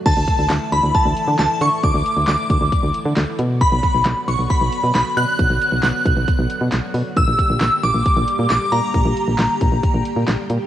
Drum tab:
CC |x-------|--------|--------|--------|
HH |xxxxxxxx|xxxxxxxx|xxxxxxxx|xxxxxxxo|
CP |--x---x-|--x---x-|--x---x-|--x---x-|
SD |--o---o-|--o---o-|--o---o-|--o---o-|
BD |oo--o---|o--oo---|oo--o---|o--oo---|

CC |--------|--------|
HH |xxxxxxxx|xxxxxxxx|
CP |--x---x-|--x---x-|
SD |--o---o-|--o---o-|
BD |oo--o---|o--oo---|